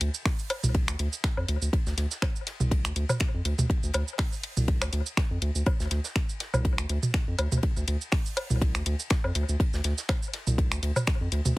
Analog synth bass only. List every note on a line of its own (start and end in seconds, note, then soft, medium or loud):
0.01 0.10 D2 medium
0.63 0.90 C2 medium
0.88 0.95 D2 medium
0.99 1.08 D2 medium
1.37 1.44 F2 medium
1.48 1.57 D2 medium
1.62 1.69 D2 medium
1.86 1.94 D2 medium
1.97 2.06 D2 medium
2.60 2.86 C2 medium
2.85 2.92 D2 medium
2.96 3.05 D2 medium
3.34 3.41 F2 medium
3.45 3.54 D2 medium
3.59 3.66 D2 medium
3.83 3.90 D2 medium
3.94 4.03 D2 medium
4.57 4.83 C2 medium
4.82 4.89 D2 medium
4.93 5.01 D2 loud
5.31 5.38 F2 medium
5.42 5.51 D2 medium
5.55 5.62 D2 medium
5.80 5.87 D2 medium
5.91 6.00 D2 medium
6.54 6.80 C2 medium
6.78 6.85 D2 medium
6.89 6.98 D2 medium
7.28 7.35 F2 medium
7.39 7.47 D2 medium
7.52 7.59 D2 medium
7.76 7.84 D2 medium
7.88 7.96 D2 medium
8.50 8.76 C2 medium
8.75 8.82 D2 medium
8.86 8.95 D2 medium
9.24 9.31 F2 medium
9.35 9.44 D2 medium
9.49 9.56 D2 medium
9.73 9.81 D2 loud
9.84 9.93 D2 medium
10.47 10.73 C2 medium
10.71 10.79 D2 medium
10.83 10.91 D2 loud
11.21 11.28 F2 medium
11.32 11.41 D2 medium
11.45 11.53 D2 medium